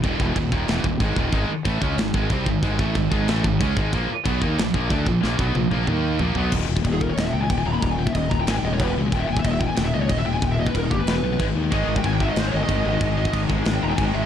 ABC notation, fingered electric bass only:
X:1
M:4/4
L:1/8
Q:1/4=185
K:none
V:1 name="Fingered electric bass" clef=bass
_E,,, _F,,, E,,, E,,, F,,, E,,, _A,,, E,,, | _A,,, z =A,,, _D,, _A,,, A,,, C,, A,,, | _A,,, =A,,, _A,,, A,,, =A,,, _A,,, _D,, A,,, | _B,,, z _C,, _E,, B,,, B,,, D,, B,,, |
_B,,, _C,, B,,, B,,, _E,,2 B,,, C,, | _E,,, E,,, E,,,2 E,,, _D,, E,,, E,,, | _E,,,2 E,,, E,,, _A,,, E,,, =E,,, _D,, | _E,,, E,,, E,,,2 E,,, _D,, E,,, E,,, |
_E,,,2 E,,, G,,, =E,,, B,,, _A,,, _E,, | _A,,, A,,, A,,,2 A,,, G,,, A,,, A,,, | _A,,,2 A,,, A,,, A,,, _E,,, A,,, A,,, |]